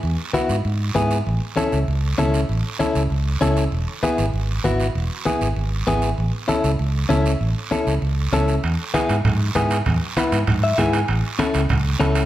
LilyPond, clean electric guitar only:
\new Staff \with { instrumentName = "Clean electric guitar" } { \time 4/4 \key e \major \tempo 4 = 195 << { r1 | r1 | r1 | r1 |
r1 | r1 | r1 | r1 |
r2 r8 e''8 gis''4 | r1 | } \\ { r4 <b e' fis'>8 r4. <b e' gis'>8 r8 | r4 <cis' e' a'>8 r4. <cis' e' a'>8 r8 | r4 <cis' e' a'>8 r4. <cis' e' a'>8 r8 | r4 <b e' gis'>8 r4. <b e' fis'>8 r8 |
r4 <b e' gis'>8 r4. <b e' gis'>8 r8 | r4 <cis' e' a'>8 r4. <cis' e' a'>8 r8 | r4 <cis' e' a'>8 r4. <cis' e' a'>8 r8 | r4 <b e' gis'>8 r4. <b e' gis'>8 r8 |
r4 <b e' b'>8 r4. <b e' gis'>8 r8 | r4 <cis' e' a'>8 r4. <cis' e' a'>8 r8 | } >> }